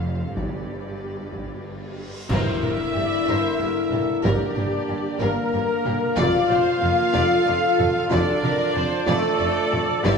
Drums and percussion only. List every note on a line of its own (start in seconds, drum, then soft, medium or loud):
0.37 taiko medium
1.33 taiko medium
2.29 concert bass drum medium
2.29 taiko loud
2.29 crash medium
2.63 taiko mid medium
3.92 taiko mid medium
4.24 taiko loud
4.57 taiko mid medium
5.85 taiko mid medium
6.17 taiko loud
6.50 taiko mid medium
7.79 taiko mid medium
8.11 taiko loud
8.43 taiko mid medium
9.72 taiko mid medium
10.05 taiko loud